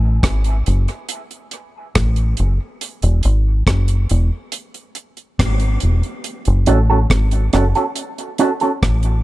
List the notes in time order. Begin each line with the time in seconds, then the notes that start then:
Already playing: A1
0.23 G#1, kick, cross-stick, closed hi-hat
0.44 closed hi-hat
0.66 F#1, closed hi-hat
0.88 closed hi-hat
1.09 closed hi-hat
1.31 closed hi-hat
1.51 closed hi-hat
1.95 A1, kick, cross-stick, closed hi-hat
2.16 closed hi-hat
2.37 F#1, closed hi-hat
2.81 closed hi-hat
3.02 E1, closed hi-hat
3.23 G#1, closed hi-hat
3.67 F#1, kick, cross-stick, closed hi-hat
3.88 closed hi-hat
4.09 E1, closed hi-hat
4.52 closed hi-hat
4.74 closed hi-hat
4.95 closed hi-hat
5.17 closed hi-hat
5.39 G#1, kick, cross-stick, closed hi-hat
5.60 closed hi-hat
5.80 E1, closed hi-hat
6.03 closed hi-hat
6.24 closed hi-hat
6.45 F#1, closed hi-hat
6.66 A1 C#4 F#4 A4, closed hi-hat
6.90 C#4 F#4 A4
7.10 G#1, kick, cross-stick, closed hi-hat
7.31 closed hi-hat
7.53 F#1 C#4 F#4 A4, cross-stick, closed hi-hat
7.75 C#4 F#4 A4, closed hi-hat
7.96 closed hi-hat
8.18 closed hi-hat
8.38 C#4 F#4 A4, closed hi-hat
8.60 C#4 F#4 A4, closed hi-hat
8.83 A1, kick, cross-stick, closed hi-hat
9.03 closed hi-hat